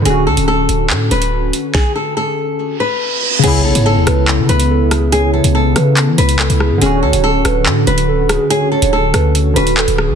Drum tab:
CC |----------------|----------------|x---------------|----------------|
HH |x--x--x---xx--x-|----------------|x--x--x---xx--x-|x--x--x-x-xxxx--|
CP |--------x-------|----------------|--------x-------|--------x---x---|
SD |----------------|o---------------|------r-------r-|------r-------r-|
BD |----------------|o---------------|----------------|----------------|

CC |----------------|----------------|
HH |x--x--x---xx--x-|x--x--x-x-xx-x--|
CP |--------x-------|------------x---|
SD |------r-------r-|------r-------r-|
BD |----------------|----------------|